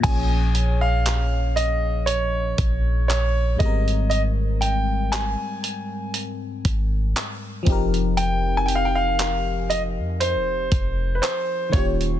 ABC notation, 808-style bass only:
X:1
M:4/4
L:1/16
Q:"Swing 16ths" 1/4=59
K:Bbdor
V:1 name="808-style bass" clef=bass
B,,,8- B,,,2 B,,,4 A,,,2- | A,,,4- A,,, z4 z A,,,2 z2 F,,,2- | F,,,6- F,,, F,,3/2 F,,,3/2 F,,,2 z2 E,,,2 |]